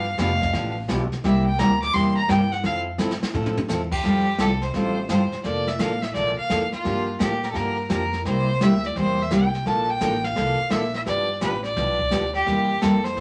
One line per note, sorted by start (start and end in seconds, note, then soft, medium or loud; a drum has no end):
0.00 0.17 G1 medium
0.00 0.19 F5 medium
0.18 0.52 F1 loud
0.18 0.30 D3 medium
0.18 0.30 F3 medium
0.18 0.30 B3 medium
0.18 0.30 D4 loud
0.18 0.30 G4 medium
0.18 0.73 F5 loud
0.18 kick soft
0.18 snare medium
0.18 hi-hat pedal medium
0.41 kick medium
0.41 snare soft
0.52 0.87 A1 loud
0.52 0.75 D3 medium
0.52 0.75 F3 medium
0.52 0.76 B3 medium
0.52 0.75 D4 medium
0.52 0.76 G4 medium
0.52 brush sweep medium
0.52 snare soft
0.88 1.10 B1 loud
0.88 1.00 D3 medium
0.88 1.00 F3 medium
0.88 1.00 B3 medium
0.88 1.00 D4 medium
0.88 1.01 G4 loud
0.88 kick soft
0.88 snare medium
0.88 hi-hat pedal soft
1.12 muted upright bass stroke soft
1.12 snare soft
1.24 1.58 C2 loud
1.24 1.46 C3 medium
1.24 1.46 G3 medium
1.24 1.46 A#3 medium
1.24 1.46 E4 medium
1.24 1.47 G4 medium
1.24 1.45 E5 medium
1.24 brush sweep soft
1.24 kick soft
1.24 snare medium
1.46 1.60 G5 medium
1.59 1.93 D2 loud
1.59 1.70 C3 medium
1.59 1.70 G3 medium
1.59 1.71 A#3 medium
1.59 1.71 E4 loud
1.59 1.71 G4 loud
1.59 1.81 A#5 loud
1.59 kick soft
1.59 snare medium
1.59 hi-hat pedal medium
1.82 1.96 D6 loud
1.82 snare soft
1.94 2.28 E2 loud
1.94 2.16 C3 medium
1.94 2.16 G3 medium
1.94 2.16 A#3 medium
1.94 2.16 E4 medium
1.94 2.17 G4 medium
1.94 2.16 C6 loud
1.94 brush sweep medium
1.94 kick soft
1.94 snare soft
2.17 2.31 A#5 loud
2.28 2.63 G2 loud
2.28 2.40 C3 medium
2.28 2.40 G3 medium
2.28 2.40 A#3 medium
2.28 2.41 E4 medium
2.28 2.41 G4 medium
2.28 2.54 G5 loud
2.28 kick soft
2.28 snare medium
2.28 hi-hat pedal medium
2.52 2.64 F#5 loud
2.52 snare soft
2.63 2.98 F2 loud
2.63 2.86 F3 medium
2.63 2.85 C4 medium
2.63 2.86 E4 medium
2.63 2.86 A4 medium
2.63 2.79 F5 medium
2.63 brush sweep medium
2.63 kick soft
2.63 snare soft
2.98 3.20 G2 medium
2.98 3.10 F3 medium
2.98 3.10 C4 medium
2.98 3.10 E4 medium
2.98 3.11 A4 medium
2.98 snare medium
2.98 hi-hat pedal medium
3.11 snare medium
3.21 muted upright bass stroke soft
3.21 snare medium
3.33 3.68 A2 loud
3.33 3.55 F3 medium
3.33 3.56 C4 medium
3.33 3.56 E4 medium
3.33 3.56 A4 medium
3.33 floor tom medium
3.46 floor tom medium
3.57 floor tom loud
3.68 4.03 E2 loud
3.68 3.80 F3 medium
3.68 3.80 C4 medium
3.68 3.81 E4 medium
3.68 3.81 A4 loud
3.68 snare medium
3.68 hi-hat pedal medium
3.92 4.42 G4 loud
3.92 kick medium
3.92 crash medium
4.03 4.38 F2 medium
4.03 4.25 F3 medium
4.03 4.26 G3 medium
4.03 4.26 C4 medium
4.03 4.26 F4 medium
4.03 4.26 A4 medium
4.03 brush sweep medium
4.03 kick soft
4.03 snare soft
4.38 4.73 C2 medium
4.38 4.51 F3 medium
4.38 4.51 G3 medium
4.38 4.51 C4 medium
4.38 4.51 F4 medium
4.38 4.62 A4 medium
4.38 4.51 A4 medium
4.38 kick soft
4.38 snare medium
4.38 hi-hat pedal medium
4.62 4.74 C5 medium
4.62 snare soft
4.74 5.08 A1 loud
4.74 4.96 F3 medium
4.74 4.97 G3 medium
4.74 4.97 C4 medium
4.74 4.97 F4 medium
4.74 4.97 A4 medium
4.74 5.07 C5 medium
4.74 brush sweep soft
4.74 kick soft
4.74 snare soft
5.09 5.30 G1 medium
5.09 5.21 F3 medium
5.09 5.21 G3 medium
5.09 5.21 C4 medium
5.09 5.21 F4 medium
5.09 5.21 A4 medium
5.09 5.42 C5 medium
5.09 kick soft
5.09 snare medium
5.09 hi-hat pedal medium
5.32 muted upright bass stroke soft
5.32 snare soft
5.44 5.78 F1 medium
5.44 5.66 F3 medium
5.44 5.67 A#3 medium
5.44 5.67 D4 medium
5.44 5.67 A4 medium
5.44 5.69 D5 loud
5.44 brush sweep medium
5.44 kick soft
5.44 snare soft
5.67 5.81 E5 medium
5.67 snare soft
5.79 6.13 A1 medium
5.79 5.91 F3 medium
5.79 5.92 A#3 medium
5.79 5.92 D4 medium
5.79 5.92 A4 medium
5.79 6.03 F5 medium
5.79 kick soft
5.79 snare medium
5.79 hi-hat pedal medium
6.02 6.13 E5 medium
6.02 snare soft
6.14 6.36 A#1 loud
6.14 6.37 F3 medium
6.14 6.37 A#3 medium
6.14 6.37 D4 medium
6.14 6.37 A4 medium
6.14 6.35 D5 loud
6.14 brush sweep soft
6.14 kick soft
6.14 snare soft
6.38 6.70 F5 medium
6.38 muted upright bass stroke soft
6.49 6.71 F2 medium
6.49 6.61 F3 medium
6.49 6.62 A#3 medium
6.49 6.62 D4 medium
6.49 6.62 A4 medium
6.49 kick soft
6.49 snare medium
6.49 hi-hat pedal medium
6.72 7.17 F4 loud
6.72 muted upright bass stroke soft
6.72 snare soft
6.84 7.19 G2 medium
6.84 7.07 D3 medium
6.84 7.07 F3 medium
6.84 7.07 A#3 medium
6.84 7.07 D4 medium
6.84 7.07 G4 medium
6.84 brush sweep soft
6.84 kick soft
6.84 snare soft
7.19 7.54 A2 medium
7.19 7.31 D3 medium
7.19 7.31 F3 medium
7.19 7.32 A#3 medium
7.19 7.32 D4 medium
7.19 7.46 G4 medium
7.19 7.32 G4 medium
7.19 kick soft
7.19 snare medium
7.19 hi-hat pedal medium
7.43 7.50 A#4 medium
7.43 snare soft
7.50 7.76 D3 medium
7.50 7.77 F3 medium
7.50 7.77 A#3 medium
7.50 7.77 D4 medium
7.50 7.77 G4 medium
7.50 7.57 A4 medium
7.54 7.89 G2 medium
7.54 7.90 A#4 medium
7.54 brush sweep medium
7.54 kick soft
7.54 snare soft
7.89 8.24 F2 medium
7.89 8.01 D3 medium
7.89 8.02 F3 medium
7.89 8.02 A#3 medium
7.89 8.02 D4 medium
7.89 8.02 G4 medium
7.89 8.23 A#4 medium
7.89 kick soft
7.89 snare medium
7.89 hi-hat pedal soft
8.13 snare soft
8.25 8.59 C2 medium
8.25 8.47 C3 medium
8.25 8.48 G3 medium
8.25 8.48 A#3 medium
8.25 8.48 E4 medium
8.25 8.48 G4 medium
8.25 8.65 C5 loud
8.25 brush sweep soft
8.25 kick soft
8.25 snare soft
8.61 8.94 D2 loud
8.61 8.72 C3 medium
8.61 8.73 G3 medium
8.61 8.73 A#3 medium
8.61 8.73 E4 medium
8.61 8.73 G4 medium
8.61 8.88 E5 loud
8.61 kick soft
8.61 snare medium
8.61 hi-hat pedal medium
8.84 8.97 D5 medium
8.84 snare soft
8.96 9.30 E2 loud
8.96 9.18 C3 medium
8.96 9.18 G3 medium
8.96 9.18 A#3 medium
8.96 9.19 E4 medium
8.96 9.19 G4 medium
8.96 9.23 C5 loud
8.96 brush sweep soft
8.96 kick soft
8.96 snare soft
9.22 9.34 E5 medium
9.31 9.65 C2 medium
9.31 9.42 C3 medium
9.31 9.43 G3 medium
9.31 9.43 A#3 medium
9.31 9.43 E4 medium
9.31 9.43 G4 medium
9.31 9.69 G5 medium
9.31 kick soft
9.31 snare medium
9.31 hi-hat pedal medium
9.54 snare soft
9.65 10.00 A#1 medium
9.65 9.88 D3 medium
9.65 9.88 F3 medium
9.65 9.88 A#3 medium
9.65 9.88 D4 medium
9.65 9.88 A4 medium
9.65 9.92 A5 medium
9.65 brush sweep soft
9.65 kick soft
9.65 snare soft
9.90 10.26 G5 loud
10.00 10.35 A1 medium
10.00 10.12 D3 medium
10.00 10.13 F3 medium
10.00 10.13 A#3 medium
10.00 10.13 D4 medium
10.00 10.13 A4 medium
10.00 kick soft
10.00 snare medium
10.00 hi-hat pedal medium
10.24 10.73 F5 loud
10.24 snare soft
10.35 10.57 C2 medium
10.35 10.58 D3 medium
10.35 10.58 F3 medium
10.35 10.58 A#3 medium
10.35 10.58 D4 medium
10.35 10.58 A4 medium
10.35 brush sweep medium
10.35 kick soft
10.35 snare medium
10.70 11.05 A#1 medium
10.70 10.82 D3 medium
10.70 10.82 F3 medium
10.70 10.82 A#3 medium
10.70 10.82 D4 medium
10.70 10.83 A4 medium
10.70 10.94 E5 medium
10.70 kick soft
10.70 snare medium
10.70 hi-hat pedal medium
10.94 11.01 E5 medium
10.94 snare soft
11.05 11.40 G1 medium
11.05 11.28 D3 medium
11.05 11.28 F3 medium
11.05 11.28 B3 medium
11.05 11.28 D4 medium
11.05 11.29 G4 medium
11.05 11.39 D5 loud
11.05 brush sweep medium
11.05 kick soft
11.05 snare soft
11.41 11.75 A1 medium
11.41 11.53 D3 medium
11.41 11.53 F3 medium
11.41 11.53 B3 medium
11.41 11.53 D4 medium
11.41 11.54 G4 medium
11.41 11.63 B4 medium
11.41 kick soft
11.41 snare medium
11.41 hi-hat pedal medium
11.64 12.30 D5 loud
11.64 snare soft
11.76 12.10 B1 loud
11.76 11.98 D3 medium
11.76 11.99 F3 medium
11.76 11.99 B3 medium
11.76 11.99 D4 medium
11.76 11.99 G4 medium
11.76 brush sweep soft
11.76 kick soft
11.76 snare soft
11.99 kick medium
12.10 12.45 D2 medium
12.10 12.23 D3 medium
12.10 12.23 F3 medium
12.10 12.23 B3 medium
12.10 12.23 D4 medium
12.10 12.23 G4 medium
12.10 snare medium
12.10 hi-hat pedal medium
12.34 12.83 G4 loud
12.34 snare soft
12.46 12.80 E2 medium
12.46 12.69 C3 medium
12.46 12.69 G3 medium
12.46 12.69 A#3 medium
12.46 12.69 E4 medium
12.46 12.69 G4 medium
12.46 brush sweep medium
12.46 kick soft
12.46 snare medium
12.81 13.16 F2 medium
12.81 12.93 C3 medium
12.81 12.93 G3 medium
12.81 12.94 A#3 medium
12.81 12.94 E4 medium
12.81 12.94 G4 medium
12.81 13.06 A4 medium
12.81 kick soft
12.81 snare medium
12.81 hi-hat pedal medium
13.04 13.20 C5 medium
13.04 snare soft
13.17 13.20 G2 medium
13.17 13.20 C3 medium
13.17 brush sweep soft
13.17 kick soft
13.17 snare soft